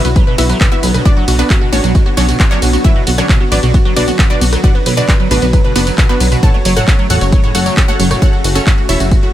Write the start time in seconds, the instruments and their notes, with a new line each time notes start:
Already playing: supersaw synth D3 F#3 B3 F#4
0.04 analog synth bass B1, acid bass B3, synth pluck B4, closed hi-hat, tambourine
0.16 acid bass F#3, synth pluck B4, kick, closed hi-hat, tambourine
0.27 acid bass B2, synth pluck B4
0.38 analog synth bass B1, acid bass B3, synth pluck E4 F#4 B4 E5, open hi-hat, ride, tambourine
0.49 acid bass F#3, synth pluck B4, closed hi-hat, tambourine
0.60 acid bass B2, synth pluck B4, kick, clap, closed hi-hat, tambourine
0.72 acid bass B3, synth pluck E4 F#4 B4 E5
0.83 analog synth bass B1, acid bass F#3, synth pluck B4, open hi-hat, ride, tambourine
0.94 acid bass B2, synth pluck B4, cross-stick, closed hi-hat, tambourine
1.05 acid bass B3, synth pluck D4 F#4 B4 D5, kick, closed hi-hat, tambourine
1.17 acid bass F#3, synth pluck F#4
1.28 analog synth bass B1, acid bass B2, synth pluck F#4, open hi-hat, ride, tambourine
1.39 synth pluck B3 D4 F#4 B4, acid bass B3, closed hi-hat, tambourine
1.50 acid bass F#3, synth pluck F#4, kick, clap, closed hi-hat, tambourine
1.61 acid bass B2, synth pluck F#4
1.73 analog synth bass A1, acid bass B3, synth pluck C#4 D4 F#4 C#5, open hi-hat, ride, tambourine
1.84 analog synth bass B1, acid bass F#3, synth pluck F#4, closed hi-hat, tambourine
1.95 synth pluck F#4, kick, closed hi-hat, tambourine
2.06 acid bass B3, synth pluck F#4
2.17 analog synth bass B1, acid bass F#3, synth pluck C#4 D4 F#4 C#5, open hi-hat, ride, tambourine
2.28 acid bass B2, synth pluck F#4, closed hi-hat, tambourine
2.40 acid bass B3, synth pluck F#4, kick, clap, closed hi-hat, tambourine
2.51 acid bass F#3, synth pluck C#4 D4 F#4 C#5, clap
2.62 analog synth bass B1, acid bass B2, synth pluck F#4, open hi-hat, ride, tambourine
2.73 acid bass B3, synth pluck F#4, closed hi-hat, tambourine
2.84 acid bass F#3, synth pluck E4 F#4 B4 E5, kick, closed hi-hat, tambourine
2.96 acid bass B2, synth pluck F#4
3.07 analog synth bass B1, acid bass B3, synth pluck F#4, open hi-hat, ride, tambourine
3.18 acid bass F#3, synth pluck C#4 D4 F#4 C#5, cross-stick, closed hi-hat, tambourine
3.29 acid bass B2, synth pluck F#4, kick, clap, closed hi-hat, tambourine
3.40 acid bass B3, synth pluck F#4
3.52 analog synth bass A1, acid bass F#3, synth pluck D4 F#4 B4 D5, open hi-hat, ride, tambourine
3.63 analog synth bass B1, acid bass B2, synth pluck F#4, closed hi-hat, tambourine
3.74 acid bass B3, synth pluck F#4, kick, closed hi-hat, tambourine
3.85 acid bass F#3, synth pluck F#4
3.96 analog synth bass B1, acid bass B2, synth pluck D4 F#4 B4 D5, open hi-hat, ride, tambourine
4.08 acid bass B3, synth pluck F#4, closed hi-hat, tambourine
4.19 acid bass F#3, synth pluck F#4, kick, clap, closed hi-hat, tambourine
4.30 acid bass B2, synth pluck D4 F#4 B4 D5
4.41 analog synth bass B1, acid bass B3, synth pluck F#4, open hi-hat, ride, tambourine
4.52 acid bass F#3, synth pluck F#4, cross-stick, closed hi-hat, tambourine
4.64 acid bass B2, synth pluck F#4 B4 D5 F#5, kick, closed hi-hat, tambourine
4.75 acid bass B3, synth pluck B4
4.86 analog synth bass B1, acid bass F#3, synth pluck B4, open hi-hat, ride, tambourine
4.97 acid bass B2, synth pluck D4 F#4 B4 D5, closed hi-hat, tambourine
5.08 acid bass B3, synth pluck B4, kick, clap, closed hi-hat, tambourine
5.20 acid bass F#3, synth pluck B4
5.31 analog synth bass A1, acid bass B2, synth pluck B3 D4 F#4 B4, open hi-hat, ride, tambourine
5.42 analog synth bass B1, acid bass B3, synth pluck B4, closed hi-hat, tambourine
5.53 acid bass F#3, synth pluck B4, kick, closed hi-hat, tambourine
5.64 acid bass B2, synth pluck B4
5.76 analog synth bass F#1, acid bass B3, synth pluck B3 D4 F#4 B4, open hi-hat, ride, tambourine
5.87 acid bass F#3, synth pluck B4, closed hi-hat, tambourine
5.98 acid bass B2, synth pluck B4, kick, clap, closed hi-hat, tambourine
6.09 acid bass B3, synth pluck B3 D4 F#4 B4, clap
6.20 analog synth bass B1, acid bass F#3, synth pluck B4, open hi-hat, ride, tambourine
6.32 acid bass B2, synth pluck B4, closed hi-hat, tambourine
6.43 acid bass A2, supersaw synth C#3 A3, synth pluck A4 C#5 F#5 A5, kick, closed hi-hat, tambourine
6.54 acid bass A3, synth pluck C#5
6.65 analog synth bass F#1, acid bass F#3, synth pluck C#5, open hi-hat, ride, tambourine
6.76 acid bass A2, synth pluck F#4 A4 C#5 F#5, cross-stick, closed hi-hat, tambourine
6.88 acid bass A3, synth pluck C#5, kick, clap, closed hi-hat, tambourine
6.99 acid bass F#3, synth pluck C#5
7.10 analog synth bass E1, acid bass A2, synth pluck F#4 A4 C#5 F#5, open hi-hat, ride, tambourine
7.21 analog synth bass F#1, acid bass A3, synth pluck C#5, closed hi-hat, tambourine
7.32 acid bass F#3, synth pluck C#5, kick, closed hi-hat, tambourine
7.44 acid bass A2, synth pluck C#5
7.55 analog synth bass F#1, acid bass A3, synth pluck F#4 A4 C#5 F#5, open hi-hat, ride, tambourine
7.66 acid bass F#3, synth pluck C#5, closed hi-hat, tambourine
7.77 acid bass A2, synth pluck C#5, kick, clap, closed hi-hat, tambourine
7.88 acid bass A3, synth pluck F#4 A4 C#5 F#5
7.99 analog synth bass F#1, acid bass F#3, synth pluck C#5, open hi-hat, ride, tambourine
8.11 acid bass A2, synth pluck C#5, cross-stick, closed hi-hat, tambourine
8.22 synth pluck F#4 A4 C#5 F#5, kick, closed hi-hat, tambourine
8.33 synth pluck F#4
8.44 analog synth bass F#1, synth pluck F#4, open hi-hat, ride, tambourine
8.55 synth pluck C#4 F#4 A4 C#5, closed hi-hat, tambourine
8.66 synth pluck F#4, kick, clap, closed hi-hat, tambourine
8.78 synth pluck F#4
8.89 analog synth bass E1, synth pluck E4 A4 C#5 E5, open hi-hat, ride, tambourine
9.00 analog synth bass F#1, synth pluck F#4, closed hi-hat, tambourine
9.11 synth pluck F#4, kick, closed hi-hat, tambourine
9.23 synth pluck F#4